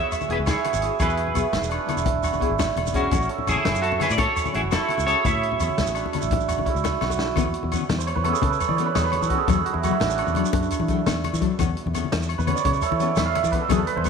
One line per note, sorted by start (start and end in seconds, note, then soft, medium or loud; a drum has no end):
0.00 3.01 B3 medium
0.00 1.19 D4 medium
0.00 0.46 E4 medium
0.00 0.28 F#4 medium
0.00 0.81 G#4 medium
0.00 0.11 C#5 medium
0.00 0.11 E5 medium
0.12 closed hi-hat soft
0.12 low conga soft
0.12 low agogo medium
0.12 shekere medium
0.21 high conga medium
0.21 low conga medium
0.21 shekere soft
0.28 0.37 E1 medium
0.28 0.39 B3 medium
0.28 0.40 E4 medium
0.28 0.63 F#4 medium
0.28 0.36 G#4 medium
0.28 0.41 G#4 medium
0.28 closed hi-hat soft
0.32 0.37 B4 medium
0.39 0.54 C#2 medium
0.39 low conga soft
0.46 0.99 E4 medium
0.46 0.97 G#4 medium
0.46 snare medium
0.46 closed hi-hat medium
0.46 low conga medium
0.46 low agogo medium
0.46 shekere medium
0.51 1.02 C#5 medium
0.64 2.22 F#4 medium
0.64 closed hi-hat medium
0.64 high conga medium
0.64 low agogo medium
0.73 0.89 G#1 medium
0.73 low conga medium
0.73 shekere medium
0.81 0.93 E4 medium
0.81 3.35 G#4 medium
0.81 0.94 G#4 medium
0.81 closed hi-hat medium
0.81 low conga soft
0.81 shekere soft
0.99 1.31 E2 medium
0.99 1.34 E4 medium
0.99 1.67 G#4 medium
0.99 1.68 B4 medium
0.99 kick medium
0.99 closed hi-hat medium
0.99 high conga medium
0.99 low conga medium
0.99 low agogo medium
0.99 shekere medium
1.09 shekere soft
1.17 closed hi-hat soft
1.27 low conga medium
1.34 1.43 B1 medium
1.34 1.45 B3 medium
1.34 1.87 E4 medium
1.34 1.46 E4 medium
1.34 1.46 G#4 medium
1.34 closed hi-hat medium
1.34 low agogo medium
1.34 shekere medium
1.43 high conga medium
1.53 1.61 G#1 medium
1.53 snare medium
1.53 closed hi-hat medium
1.53 low conga medium
1.62 1.77 E1 medium
1.62 shekere medium
1.69 3.17 D4 medium
1.69 closed hi-hat soft
1.69 low agogo medium
1.87 1.98 B3 medium
1.87 1.99 E4 medium
1.87 2.41 E4 medium
1.87 muted nylon-string guitar stroke medium
1.87 closed hi-hat medium
1.87 high conga medium
1.87 low agogo medium
1.87 shekere soft
1.97 2.43 E1 medium
1.97 shekere medium
2.06 kick medium
2.06 closed hi-hat medium
2.06 low conga medium
2.23 3.82 F#4 medium
2.23 closed hi-hat soft
2.23 low conga soft
2.23 low agogo medium
2.23 shekere medium
2.33 high conga medium
2.33 low conga medium
2.33 shekere soft
2.40 2.51 B3 medium
2.40 2.52 E4 medium
2.40 3.65 E4 medium
2.40 2.53 G#4 medium
2.40 kick medium
2.40 closed hi-hat soft
2.50 2.73 G#1 medium
2.50 low conga soft
2.59 snare medium
2.59 closed hi-hat medium
2.59 low conga medium
2.59 low agogo medium
2.59 shekere loud
2.76 3.07 E1 medium
2.76 closed hi-hat soft
2.76 high conga medium
2.76 low agogo medium
2.87 low conga medium
2.87 shekere medium
2.91 3.04 B3 medium
2.91 3.04 E4 medium
2.91 3.05 G#4 medium
2.91 kick medium
2.91 closed hi-hat medium
2.95 3.28 C#4 medium
2.95 3.28 F#4 medium
2.95 shekere soft
3.11 3.27 A1 loud
3.11 3.22 C#4 medium
3.11 6.01 C#4 medium
3.11 3.23 E4 medium
3.11 3.23 A4 medium
3.11 kick medium
3.11 closed hi-hat medium
3.11 high conga medium
3.11 low conga medium
3.11 low agogo medium
3.11 shekere medium
3.21 low conga soft
3.21 shekere soft
3.29 4.24 A4 medium
3.29 closed hi-hat soft
3.38 low conga medium
3.47 3.55 A1 medium
3.47 3.58 C#4 medium
3.47 3.59 E4 medium
3.47 3.81 E4 soft
3.47 3.81 G#4 medium
3.47 3.59 A4 medium
3.47 closed hi-hat soft
3.47 low agogo medium
3.47 shekere medium
3.56 high conga medium
3.65 3.73 F#1 medium
3.65 4.00 E4 medium
3.65 snare medium
3.65 closed hi-hat medium
3.65 low conga loud
3.75 4.05 F#2 medium
3.75 low conga soft
3.75 shekere medium
3.82 3.99 F#4 medium
3.82 4.54 F#4 medium
3.82 4.01 A4 medium
3.82 closed hi-hat medium
3.82 low agogo medium
3.92 low conga medium
3.98 4.10 C#4 soft
3.98 4.11 E4 medium
3.98 4.72 E4 medium
3.98 4.11 G#4 medium
3.98 4.12 A4 medium
3.98 snare soft
3.98 closed hi-hat medium
3.98 high conga medium
3.98 low agogo medium
3.98 shekere soft
4.03 4.13 B4 medium
4.10 4.25 A2 medium
4.10 4.19 D5 medium
4.10 shekere medium
4.18 4.51 A4 medium
4.18 4.52 C#5 loud
4.18 6.18 G#5 medium
4.18 kick medium
4.18 closed hi-hat medium
4.18 low conga medium
4.36 closed hi-hat soft
4.36 low agogo medium
4.36 shekere loud
4.45 high conga medium
4.45 low conga medium
4.45 shekere soft
4.53 4.62 A1 medium
4.53 4.64 C#4 medium
4.53 4.65 E4 medium
4.53 4.60 E4 medium
4.53 4.89 F#4 medium
4.53 4.60 G#4 medium
4.53 4.66 A4 medium
4.53 closed hi-hat soft
4.63 4.78 F#1 medium
4.63 low conga soft
4.71 5.05 E4 medium
4.71 5.24 E4 medium
4.71 5.05 A4 medium
4.71 snare medium
4.71 closed hi-hat medium
4.71 low conga loud
4.71 low agogo medium
4.71 shekere loud
4.88 6.47 F#4 medium
4.88 closed hi-hat soft
4.88 high conga medium
4.88 low agogo medium
4.98 5.13 C#2 medium
4.98 low conga medium
4.98 shekere medium
5.06 5.17 C#4 medium
5.06 5.18 E4 medium
5.06 8.10 G#4 medium
5.06 5.23 A4 medium
5.06 5.19 A4 medium
5.06 5.26 C#5 medium
5.06 closed hi-hat soft
5.06 shekere soft
5.24 5.55 A2 medium
5.24 5.61 E4 medium
5.24 6.98 C#5 medium
5.24 7.02 E5 medium
5.24 kick medium
5.24 closed hi-hat medium
5.24 high conga medium
5.24 low conga medium
5.24 low agogo medium
5.24 shekere loud
5.43 closed hi-hat soft
5.52 low conga medium
5.59 5.68 E2 medium
5.59 5.70 C#4 medium
5.59 5.71 E4 medium
5.59 6.13 E4 medium
5.59 5.71 A4 medium
5.59 closed hi-hat soft
5.59 low agogo medium
5.59 shekere loud
5.70 high conga medium
5.70 low conga soft
5.78 5.86 C#2 loud
5.78 snare medium
5.78 closed hi-hat medium
5.78 low conga medium
5.78 shekere soft
5.87 6.02 A1 medium
5.87 low conga soft
5.87 shekere medium
5.95 8.12 D4 medium
5.95 closed hi-hat soft
5.95 low agogo medium
5.95 shekere soft
6.06 low conga medium
6.12 6.23 C#4 medium
6.12 6.65 E4 medium
6.12 6.24 E4 medium
6.12 closed hi-hat soft
6.12 high conga medium
6.12 low agogo medium
6.12 shekere soft
6.16 6.25 A4 medium
6.22 6.69 A1 medium
6.22 low conga soft
6.22 shekere medium
6.31 kick medium
6.31 closed hi-hat medium
6.31 low conga medium
6.40 low conga soft
6.40 shekere soft
6.48 7.01 F#4 medium
6.48 closed hi-hat soft
6.48 low agogo medium
6.48 shekere medium
6.59 high conga medium
6.59 low conga medium
6.65 6.76 C#4 medium
6.65 9.73 E4 medium
6.65 6.77 E4 medium
6.65 6.78 A4 medium
6.65 kick medium
6.65 closed hi-hat soft
6.75 6.98 C#2 medium
6.75 shekere soft
6.84 snare soft
6.84 low conga medium
6.84 low agogo medium
6.84 shekere medium
6.94 low conga soft
7.01 7.32 B1 medium
7.01 9.29 F#4 medium
7.01 snare medium
7.01 high conga medium
7.01 low conga soft
7.01 low agogo medium
7.10 low conga medium
7.10 shekere medium
7.17 7.28 C#4 medium
7.17 7.29 E4 medium
7.17 7.30 A4 medium
7.17 snare medium
7.35 7.52 E2 loud
7.35 7.46 E3 medium
7.35 7.47 B3 medium
7.35 7.47 C#4 medium
7.35 7.47 A4 medium
7.35 kick medium
7.35 closed hi-hat medium
7.35 high conga medium
7.35 low conga medium
7.35 low agogo medium
7.35 shekere medium
7.46 low conga soft
7.54 closed hi-hat soft
7.54 low conga soft
7.63 7.79 E2 medium
7.63 low conga medium
7.71 7.82 E3 medium
7.71 7.83 B3 medium
7.71 7.84 C#4 medium
7.71 closed hi-hat soft
7.71 low agogo medium
7.71 shekere medium
7.80 high conga medium
7.89 8.13 E2 medium
7.89 snare medium
7.89 closed hi-hat medium
7.89 low conga medium
7.98 8.12 C5 medium
7.98 shekere medium
8.06 8.58 C#5 medium
8.06 closed hi-hat soft
8.06 low agogo medium
8.15 8.32 E2 medium
8.15 8.50 B4 medium
8.15 low conga medium
8.24 8.35 E3 medium
8.24 8.36 B3 medium
8.24 8.37 C#4 medium
8.24 8.39 A4 medium
8.24 closed hi-hat soft
8.24 high conga medium
8.24 low agogo medium
8.28 8.37 A4 medium
8.33 8.47 G#4 medium
8.33 shekere medium
8.41 8.58 C#3 medium
8.41 9.01 A4 medium
8.41 kick medium
8.41 closed hi-hat medium
8.41 low conga medium
8.50 8.85 B4 medium
8.50 shekere soft
8.59 8.74 C#5 medium
8.59 closed hi-hat soft
8.59 low agogo medium
8.59 shekere medium
8.68 8.93 E3 medium
8.68 8.83 D5 medium
8.68 high conga medium
8.68 low conga medium
8.77 8.88 E3 medium
8.77 8.89 B3 medium
8.77 8.89 C#4 medium
8.77 8.90 A4 medium
8.77 9.12 C#5 medium
8.77 closed hi-hat soft
8.77 shekere soft
8.86 9.03 B4 medium
8.95 9.19 E2 medium
8.95 9.27 G#4 medium
8.95 snare medium
8.95 closed hi-hat medium
8.95 low conga loud
8.95 low agogo medium
8.95 shekere medium
9.03 11.77 B4 medium
9.12 10.07 C#5 medium
9.12 closed hi-hat medium
9.12 high conga medium
9.12 low conga soft
9.12 low agogo medium
9.21 9.37 E3 medium
9.21 9.44 A4 medium
9.21 low conga medium
9.21 shekere medium
9.30 9.41 E3 medium
9.30 9.42 B3 medium
9.30 9.42 C#4 medium
9.30 9.65 F#4 medium
9.30 9.43 A4 medium
9.30 kick medium
9.30 closed hi-hat medium
9.38 9.52 G#4 medium
9.46 9.63 E2 loud
9.46 9.58 F#3 medium
9.46 9.59 A3 medium
9.46 9.59 D4 medium
9.46 9.61 A4 medium
9.46 9.59 A4 medium
9.46 kick medium
9.46 closed hi-hat medium
9.46 high conga loud
9.46 low conga medium
9.46 low agogo medium
9.46 shekere medium
9.55 12.58 G#4 medium
9.55 low conga soft
9.65 9.82 F#4 medium
9.65 closed hi-hat medium
9.65 low conga soft
9.73 9.90 E2 medium
9.73 9.91 E4 medium
9.73 low conga medium
9.83 9.94 F#3 medium
9.83 9.95 A3 medium
9.83 9.95 D4 medium
9.83 13.08 F#4 medium
9.83 9.96 A4 medium
9.83 closed hi-hat medium
9.83 low agogo medium
9.83 shekere medium
9.91 12.74 E4 medium
9.91 high conga medium
10.00 10.24 A1 medium
10.00 10.16 D4 medium
10.00 snare loud
10.00 closed hi-hat medium
10.00 low conga medium
10.10 10.24 C#4 medium
10.10 shekere medium
10.18 12.53 D4 medium
10.18 closed hi-hat medium
10.18 low agogo medium
10.27 10.42 E2 medium
10.27 low conga medium
10.27 shekere soft
10.35 10.46 F#3 medium
10.35 10.47 A3 medium
10.35 10.48 D4 medium
10.35 closed hi-hat medium
10.35 high conga medium
10.35 low agogo medium
10.39 10.48 A4 medium
10.45 shekere medium
10.53 10.69 F#2 medium
10.53 kick medium
10.53 closed hi-hat medium
10.53 low conga loud
10.63 shekere soft
10.70 closed hi-hat soft
10.70 low agogo medium
10.70 shekere loud
10.80 11.03 E3 medium
10.80 high conga medium
10.80 low conga medium
10.88 10.99 F#3 medium
10.88 11.00 A3 medium
10.88 11.00 D4 medium
10.88 11.00 A4 medium
10.88 kick medium
10.88 closed hi-hat soft
10.88 shekere soft
11.06 11.30 E2 medium
11.06 snare medium
11.06 closed hi-hat medium
11.06 low conga loud
11.06 low agogo medium
11.06 shekere medium
11.24 closed hi-hat soft
11.24 high conga medium
11.24 low conga soft
11.24 low agogo medium
11.33 11.48 E3 medium
11.33 low conga medium
11.33 shekere medium
11.40 11.51 F#3 medium
11.40 11.52 A3 medium
11.40 11.53 D4 medium
11.40 11.53 A4 medium
11.40 kick medium
11.40 closed hi-hat soft
11.58 11.75 E2 medium
11.58 11.69 E3 medium
11.58 11.69 B3 medium
11.58 11.70 C#4 medium
11.58 11.71 A4 medium
11.58 kick medium
11.58 closed hi-hat medium
11.58 high conga medium
11.58 low conga medium
11.58 low agogo medium
11.58 shekere medium
11.69 low conga soft
11.77 closed hi-hat soft
11.77 low conga soft
11.86 12.01 E2 medium
11.86 low conga medium
11.94 12.04 E3 medium
11.94 12.05 B3 medium
11.94 12.06 C#4 medium
11.94 12.06 A4 medium
11.94 closed hi-hat medium
11.94 low agogo medium
11.94 shekere medium
12.04 high conga medium
12.12 12.36 E2 loud
12.12 snare medium
12.12 closed hi-hat medium
12.12 low conga medium
12.22 shekere medium
12.29 closed hi-hat soft
12.29 low agogo medium
12.38 12.54 E2 loud
12.38 13.51 B4 medium
12.38 low conga medium
12.38 shekere soft
12.46 12.57 E3 medium
12.46 12.58 B3 medium
12.46 12.58 C#4 medium
12.46 12.59 A4 medium
12.46 12.61 C#5 medium
12.46 closed hi-hat medium
12.46 high conga loud
12.46 low agogo medium
12.55 12.71 D5 medium
12.55 shekere medium
12.65 12.80 C#3 medium
12.65 12.90 C#5 medium
12.65 kick medium
12.65 closed hi-hat medium
12.65 low conga loud
12.74 13.32 E4 medium
12.74 shekere soft
12.82 13.60 A4 medium
12.82 closed hi-hat soft
12.82 low agogo medium
12.82 shekere loud
12.91 13.14 E3 medium
12.91 13.00 C#5 medium
12.91 high conga medium
12.91 low conga medium
12.99 13.10 E3 medium
12.99 13.10 B3 medium
12.99 13.11 C#4 medium
12.99 13.12 A4 medium
12.99 13.14 C#5 medium
12.99 closed hi-hat soft
12.99 shekere soft
13.08 13.43 D5 medium
13.16 13.40 E2 medium
13.16 13.32 E5 medium
13.16 snare medium
13.16 closed hi-hat medium
13.16 low conga loud
13.16 low agogo medium
13.16 shekere medium
13.26 13.41 F5 loud
13.35 14.10 E5 medium
13.35 closed hi-hat medium
13.35 high conga loud
13.35 low conga soft
13.35 low agogo medium
13.43 13.59 E3 medium
13.43 14.10 D5 medium
13.43 low conga medium
13.43 shekere medium
13.51 13.62 E3 medium
13.51 13.64 B3 medium
13.51 13.64 C#4 medium
13.51 13.64 A4 medium
13.51 13.86 B4 medium
13.51 kick medium
13.51 closed hi-hat medium
13.61 13.77 A4 medium
13.68 13.85 E2 medium
13.68 13.80 F#3 medium
13.68 13.80 B3 medium
13.68 13.80 E4 medium
13.68 13.81 G#4 medium
13.68 13.84 G#4 medium
13.68 kick medium
13.68 closed hi-hat medium
13.68 high conga loud
13.68 low conga loud
13.68 low agogo medium
13.68 shekere loud
13.78 14.10 A4 medium
13.78 low conga soft
13.87 14.02 B4 loud
13.87 closed hi-hat soft
13.96 14.10 E2 medium
13.96 14.10 C5 medium
13.96 low conga medium
14.02 14.10 F#3 medium
14.02 14.10 B3 medium
14.02 14.10 E4 medium
14.02 14.10 G#4 medium
14.02 14.10 B4 medium
14.02 closed hi-hat soft
14.02 low agogo medium
14.02 shekere loud